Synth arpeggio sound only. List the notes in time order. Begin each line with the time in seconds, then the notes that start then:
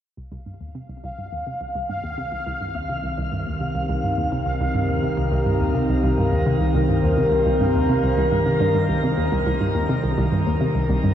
0.18 C2
0.32 C2
0.46 G2
0.61 D#2
0.75 C3
0.89 C2
1.04 C2
1.18 G2
1.32 D#2
1.46 C3
1.61 C2
1.75 C2
1.90 G2
2.04 D#2
2.18 C3
2.32 C2
2.47 C2
2.61 G2
2.75 D#2
2.89 C3
3.04 C2
3.18 C2
3.32 G2
3.46 D#2
3.61 C3
3.75 C2
3.89 C2
4.03 G2
4.18 D#2
4.32 C3
4.46 C2
4.61 C2
4.75 G2
4.89 D#2
5.03 C3
5.18 C2
5.32 C2
5.46 G2
5.61 D#2
5.75 C3
5.89 C2
6.04 C2
6.18 G2
6.32 D#2
6.46 C3
6.61 C2
6.75 C2
6.89 G2
7.03 D#2
7.18 C3
7.32 C2
7.46 C2
7.60 G2
7.75 D#2
7.89 C3
8.03 C2
8.18 C2
8.32 G2
8.46 C3
8.60 G2
8.75 G2
8.89 C2
9.03 C3
9.18 D#2
9.32 C2
9.46 C2
9.61 G2
9.75 D#2
9.89 C3
10.04 C2
10.18 C2
10.32 G2
10.47 D#2
10.61 C3
10.75 C2
10.89 C2
11.04 G2